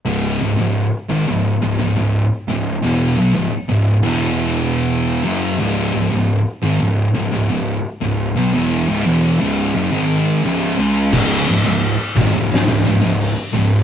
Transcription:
<<
  \new Staff \with { instrumentName = "Distorted electric guitar" } { \clef bass \time 4/4 \key cis \minor \tempo 4 = 87 <cis, gis, cis>8 <cis, gis,>16 <cis, gis,>8 r16 <gis, dis>16 <cis, gis,>8 <cis, gis,>16 <cis, gis,>16 <cis, gis,>8 r16 <cis, gis,>8 | <e, b, e>8 <b, fis>16 <cis, gis,>16 r16 <cis, gis,>8 <e, b, e>4.~ <e, b, e>16 <fis, cis fis>8 | <cis, gis, cis>8 <cis, gis,>16 <cis, gis,>8 r16 <gis, dis>16 <cis, gis,>8 <cis, gis,>16 <cis, gis,>16 <cis, gis,>8 r16 <cis, gis,>8 | <b, fis>16 <e, b, e>8 <cis, gis,>16 <e, b, e>8 <cis, gis, cis>8 <fis, cis>16 <gis, dis gis>8. <cis, gis, cis>8 <cis gis cis'>8 |
<cis, gis, cis>8 <cis, gis,>16 <cis, gis,>8 r16 <gis, dis>16 <cis, gis,>8 <cis, gis,>16 <cis, gis,>16 <cis, gis,>8 r16 <cis, gis,>8 | }
  \new Staff \with { instrumentName = "Distorted electric guitar" } { \clef bass \time 4/4 \key cis \minor <cis, gis, cis>8 <cis, gis,>16 <cis, gis,>8 r16 <gis, dis>16 <cis, gis,>8 <cis, gis,>16 <cis, gis,>16 <cis, gis,>8 r16 <cis, gis,>8 | <e, b, e>8 <b, fis>16 <cis, gis,>16 r16 <cis, gis,>8 <e, b, e>4.~ <e, b, e>16 <fis, cis fis>8 | <cis, gis, cis>8 <cis, gis,>16 <cis, gis,>8 r16 <gis, dis>16 <cis, gis,>8 <cis, gis,>16 <cis, gis,>16 <cis, gis,>8 r16 <cis, gis,>8 | <b, fis>16 <e, b, e>8 <cis, gis,>16 <e, b, e>8 <cis, gis, cis>8 <fis, cis>16 <gis, dis gis>8. <cis, gis, cis>8 <cis gis cis'>8 |
<cis, gis, cis>8 <cis, gis,>16 <cis, gis,>8 r16 <gis, dis>16 <cis, gis,>8 <cis, gis,>16 <cis, gis,>16 <cis, gis,>8 r16 <cis, gis,>8 | }
  \new Staff \with { instrumentName = "Distorted electric guitar" } { \clef bass \time 4/4 \key cis \minor r1 | r1 | r1 | r1 |
<cis, gis, cis>8 <cis, gis,>16 <cis, gis,>8 r16 <gis, dis>16 <cis, gis,>8 <cis, gis,>16 <cis, gis,>16 <cis, gis,>8 r16 <cis, gis,>8 | }
  \new Staff \with { instrumentName = "Picked electric bass" } { \clef bass \time 4/4 \key cis \minor cis,,8 cis,,16 cis,,8 r16 gis,,16 cis,,8 cis,,16 cis,,16 cis,,8 r16 cis,,8 | e,,8 b,,16 cis,,16 r16 cis,,8 e,,4.~ e,,16 fis,,8 | cis,,8 cis,,16 cis,,8 r16 gis,,16 cis,,8 cis,,16 cis,,16 cis,,8 r16 cis,,8 | b,,16 e,,8 cis,,16 e,,8 cis,,8 fis,,16 gis,,8. cis,,8 cis,8 |
cis,,8 cis,,16 cis,,8 r16 gis,,16 cis,,8 cis,,16 cis,,16 cis,,8 r16 cis,,8 | }
  \new DrumStaff \with { instrumentName = "Drums" } \drummode { \time 4/4 r4 r4 r4 r4 | r4 r4 r4 r4 | r4 r4 r4 r4 | r4 r4 r4 r4 |
<cymc bd>4 hho8 bd8 <hho sn>4 hho4 | }
>>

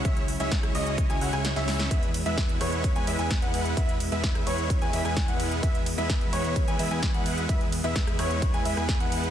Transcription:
<<
  \new Staff \with { instrumentName = "Grand piano" } { \time 4/4 \key e \major \tempo 4 = 129 e''16 r8 e''8. dis''8. gis''16 fis''16 gis''16 r16 e''8. | e''16 r8 e''8. cis''8. gis''16 e''16 gis''8 fis''8. | e''16 r8 e''8. cis''8. gis''16 e''16 gis''8 fis''8. | e''16 r8 e''8. cis''8. gis''16 e''16 gis''8 fis''8. |
e''16 r8 e''8. cis''8. gis''16 e''16 gis''8 fis''8. | }
  \new Staff \with { instrumentName = "Supersaw synth" } { \time 4/4 \key e \major <gis cis' e' cis'' e''>16 r8 <gis cis' e' cis'' e''>8. <gis cis' e' cis'' dis''>8. <gis cis' e' cis'' gis''>16 <gis cis' e' cis'' fis''>16 <gis cis' e' cis'' gis''>16 r16 <gis cis' e' cis'' e''>8. | <gis b e' b' e''>16 r8 <gis b e' b' e''>8. <gis b e' b' cis''>8. <gis b e' b' gis''>16 <gis b e' b' e''>16 <gis b e' b' gis''>8 <gis b e' b' fis''>8. | <gis b e' b' e''>16 r8 <gis b e' b' e''>8. <gis b e' b' cis''>8. <gis b e' b' gis''>16 <gis b e' b' e''>16 <gis b e' b' gis''>8 <gis b e' b' fis''>8. | <gis b e' b' e''>16 r8 <gis b e' b' e''>8. <gis b e' b' cis''>8. <gis b e' b' gis''>16 <gis b e' b' e''>16 <gis b e' b' gis''>8 <gis b e' b' fis''>8. |
<gis b e' b' e''>16 r8 <gis b e' b' e''>8. <gis b e' b' cis''>8. <gis b e' b' gis''>16 <gis b e' b' e''>16 <gis b e' b' gis''>8 <gis b e' b' fis''>8. | }
  \new Staff \with { instrumentName = "Analog synth pad" } { \clef bass \time 4/4 \key e \major << { e'1 | e'1~ | e'1 | r1 |
r1 | } \\ { <cis fis>1 | <b, gis>1~ | <b, gis>1~ | <b, gis>1~ |
<b, gis>1 | } >> }
  \new Staff \with { instrumentName = "Analog synth bass" } { \clef bass \time 4/4 \key e \major cis,8. cis,8. cis,8. cis,16 cis,16 cis,8 cis,8. | e,8. e,8. e,8. e,16 e,16 e,8 e,8. | e,8. e,8. e,8. e,16 e,16 e,8 e,8. | e,8. e,8. e,8. e,16 e,16 e,8 e,8. |
e,8. e,8. e,8. e,16 e,16 e,8 e,8. | }
  \new DrumStaff \with { instrumentName = "Drums" } \drummode { \time 4/4 <hh bd>16 hh16 hho16 hh16 <hh bd sn>16 <hh ss>16 hho16 hh16 <hh bd>16 hh16 hho16 <hh ss>16 <hh sn>16 <hh sn>16 <hho sn>16 <hh sn>16 | <hh bd cymr>16 hh16 <hho cymr>16 hh16 <hh bd cymr sn>16 hh16 <hho cymr ss>16 hh16 <hh bd cymr>16 hh16 <hho cymr>16 hh16 <hh bd cymr sn>16 hh16 <hho cymr>16 hh16 | <hh bd cymr>16 hh16 <hho cymr>16 hh16 <hh bd cymr sn>16 <hh ss>16 <hho cymr>16 hh16 <hh bd cymr>16 hh16 <hho cymr>16 <hh ss>16 <hh bd cymr sn>16 hh16 <hho cymr>16 hh16 | <hh bd cymr>16 hh16 <hho cymr>16 hh16 <hh bd cymr sn>16 hh16 <hho cymr>16 hh16 <hh bd cymr>16 hh16 <hho cymr>16 hh16 <hh bd cymr sn>16 hh16 <hho cymr>16 hh16 |
<hh bd cymr>16 hh16 <hho cymr>16 hh16 <hh bd cymr sn>16 <hh ss>16 <hho cymr ss>16 hh16 <hh bd cymr>16 hh16 <hho cymr>16 <hh ss>16 <hh bd cymr sn>16 hh16 <hho cymr>16 hh16 | }
>>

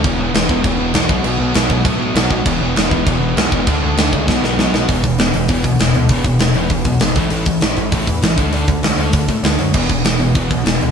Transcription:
<<
  \new Staff \with { instrumentName = "Distorted electric guitar" } { \clef bass \time 4/4 \key d \lydian \tempo 4 = 198 <e, b, e>8 <e, b, e>8 <e, b, e>8 <e, b, e>8 <e, b, e>8 <e, b, e>8 <e, b, e>8 <b, fis b>8 | <b, fis b>8 <b, fis b>8 <b, fis b>8 <b, fis b>8 <b, fis b>8 <b, fis b>8 <b, fis b>8 <b, fis b>8 | <e, b, e>8 <e, b, e>8 <e, b, e>8 <e, b, e>8 <e, b, e>8 <e, b, e>8 <e, b, e>8 <e, b, e>8 | <d a d'>8 <d a d'>8 <d a d'>8 <d a d'>8 <b, fis b>8 <b, fis b>8 <b, fis b>8 <b, fis b>8 |
<e, b, e>8 <e, b,>8 <e, b,>8 <e, b,>8 <e, b, e>8 <e, b,>8 <e, b,>8 <e, b,>8 | <e, b, e>8 <e, b,>8 <e, b,>8 <e, b, e>8 <e, b,>8 <e, b,>8 <e, b,>8 <a, e a>8 | <a, e a>8 <a, e>8 <a, e>8 <a, e>8 <a, e a>8 <a, e>8 <a, e>8 <d a d'>8 | <d a d'>8 <d a>8 <d a>8 <d a d'>8 <d a>8 <d a>8 <d a>8 <d a>8 |
<e, b, e>8 <e, b,>8 <e, b,>8 <e, b,>8 <e, b, e>8 <e, b,>8 <e, b,>8 <e, b,>8 | }
  \new Staff \with { instrumentName = "Analog synth bass" } { \clef bass \time 4/4 \key d \lydian e,,8 e,,8 e,,4 e,,4 b,,8 b,,8 | b,,8 b,,8 b,,8 b,,8 a,4 b,,8 b,,8 | e,,8 e,,8 e,,4 e,,4 b,,8 e,,8 | d,8 d,8 d,8 cis,8 b,,4 b,,8 b,,8 |
e,,8 e,,8 e,,8 e,,8 e,,8 b,,8 e,,8 d,8 | e,,8 e,,8 d,,8 e,,8 e,,8 b,,8 gis,,8 a,,8 | a,,8 a,,8 a,,8 a,,8 a,,8 e,8 a,,8 d,8 | d,8 d,8 b,,8 d,8 d,8 a,8 d,8 fis,8 |
e,,8 e,,8 e,,8 e,,8 e,,8 b,,8 e,,8 d,8 | }
  \new DrumStaff \with { instrumentName = "Drums" } \drummode { \time 4/4 <cymc bd>4 <cymc sn>8 bd8 <cymc bd>4 <cymc sn>8 bd8 | cymc4 <cymc sn>8 bd8 <cymc bd>4 <cymc sn>8 bd8 | <cymc bd>4 <cymc sn>8 bd8 <cymc bd>4 <cymc sn>8 bd8 | <cymc bd>4 <cymc sn>8 bd8 <bd sn>8 sn8 sn8 sn8 |
<hho bd>8 <hho bd>8 <hho sn>8 hho8 <hho bd>8 <hho bd>8 <hho sn>8 hho8 | <hho bd>8 <hho bd>8 <hho sn>8 hho8 <hho bd>8 <hho bd>8 <hho sn>8 <hho bd>8 | hho8 <hho bd>8 <hho sn>8 hho8 <hho bd>8 <hho bd>8 <hho sn>8 <hho bd>8 | hho8 <hho bd>8 <hho sn>8 hho8 <hho bd>8 <hho bd>8 <hho sn>8 hho8 |
<cymc bd>8 <hho bd>8 <hho sn>8 hho8 <hho bd>8 <hho bd>8 <hho sn>8 hho8 | }
>>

